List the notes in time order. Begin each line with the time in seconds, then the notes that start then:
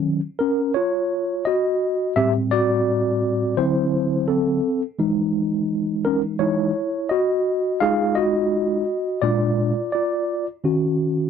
Already playing: D#3 F#3 C#4
0.39 C#4 A#4
0.74 F4 C#5
1.45 F#4 D#5
2.16 A2 G3 C4 G4 E5
2.51 F#4 D5
3.57 D3 F#3 C4 E4 C5
4.28 C4 A4
4.99 E3 G#3 D#4
6.05 C#4 A#4
6.39 E3 G#3 D#4 E4 C#5
7.09 F#4 D#5
7.80 G#3 D#4 F4 G#4 F5
8.15 F#4 D#5
9.22 A#2 G#3 D4 F4 D5
9.92 F4 D5
10.64 D#3 C#4 F#4